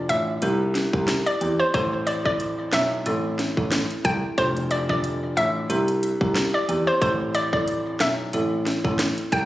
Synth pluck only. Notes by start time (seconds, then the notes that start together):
0.09 E5
1.26 D5
1.60 C5
1.74 C5
2.07 D5
2.25 D5
2.73 E5
4.05 G5
4.38 C5
4.71 D5
4.90 D5
5.37 E5
6.54 D5
6.87 C5
7.02 C5
7.35 D5
7.53 D5
8.01 E5
9.32 G5